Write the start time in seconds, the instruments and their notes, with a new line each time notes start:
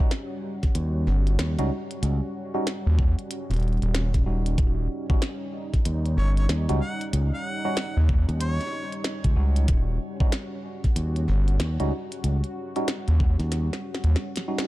Already playing: analog synth pad G3 C#4 F#4
0.00 tine electric piano G3 C#4 D#4 F#4
0.11 snare, closed hi-hat
0.63 kick, snare, closed hi-hat
0.75 fingered electric bass D#2, closed hi-hat
1.07 analog synth bass G1, snare
1.27 closed hi-hat
1.39 fingered electric bass D#2, snare, closed hi-hat
1.59 fingered electric bass C#2, tine electric piano G3 C#4 D#4 F#4, closed hi-hat
1.91 closed hi-hat
2.03 fingered electric bass C#2, closed hi-hat
2.54 tine electric piano G3 C#4 D#4 F#4
2.67 snare, closed hi-hat
2.87 analog synth bass D#2
2.99 kick
3.19 closed hi-hat
3.31 closed hi-hat
3.50 analog synth bass D#1, snare, closed hi-hat
3.54 closed hi-hat
3.57 closed hi-hat
3.60 closed hi-hat
3.63 closed hi-hat
3.68 closed hi-hat
3.73 closed hi-hat
3.77 closed hi-hat
3.82 analog synth bass D#1, closed hi-hat
3.95 snare, closed hi-hat
4.14 kick, snare, closed hi-hat
4.26 analog synth bass D#1, tine electric piano G3 C#4 D#4 F#4
4.46 closed hi-hat
4.58 analog synth bass D#1, analog synth pad D#4, kick, closed hi-hat
5.10 tine electric piano G3 C#4 D#4 F#4, kick
5.22 snare, closed hi-hat
5.74 kick, snare, closed hi-hat
5.85 fingered electric bass D#2, closed hi-hat
6.06 closed hi-hat
6.17 analog synth bass G1, harmonica C#5, snare
6.37 harmonica C#5, closed hi-hat
6.49 fingered electric bass D#2, snare, closed hi-hat
6.69 fingered electric bass C#2, tine electric piano G3 C#4 D#4 F#4, closed hi-hat
6.81 harmonica F#5
7.01 closed hi-hat
7.13 fingered electric bass C#2, closed hi-hat
7.34 harmonica F#5
7.65 tine electric piano G3 C#4 D#4 F#4
7.77 snare, closed hi-hat
7.97 analog synth bass D#2
8.09 kick
8.29 fingered electric bass D#2, closed hi-hat
8.41 harmonica C#5, closed hi-hat
8.61 snare, closed hi-hat
8.67 snare
8.73 snare
8.83 snare
8.92 closed hi-hat
9.04 snare, closed hi-hat
9.24 fingered electric bass C#2, kick, closed hi-hat
9.36 analog synth bass C#2, tine electric piano G3 C#4 D#4 F#4
9.56 closed hi-hat
9.68 analog synth bass D#1, analog synth pad F#4, kick, closed hi-hat
10.20 tine electric piano G3 C#4 D#4 F#4, kick
10.32 snare, closed hi-hat
10.84 kick, snare, closed hi-hat
10.96 fingered electric bass D#2, closed hi-hat
11.16 closed hi-hat
11.28 analog synth bass G1, snare
11.48 closed hi-hat
11.60 fingered electric bass D#2, snare, closed hi-hat
11.80 fingered electric bass C#2, tine electric piano G3 C#4 D#4 F#4, closed hi-hat
12.12 closed hi-hat
12.24 fingered electric bass C#2, closed hi-hat
12.44 closed hi-hat
12.76 tine electric piano G3 C#4 D#4 F#4, closed hi-hat
12.88 snare, closed hi-hat
13.08 analog synth bass D#2, closed hi-hat
13.20 kick
13.39 fingered electric bass D#2, snare, closed hi-hat
13.52 snare, closed hi-hat
13.73 snare
13.95 snare
14.04 analog synth bass D#2, closed hi-hat
14.16 snare
14.36 snare, closed hi-hat
14.48 tine electric piano G3 C#4 D#4 F#4
14.58 snare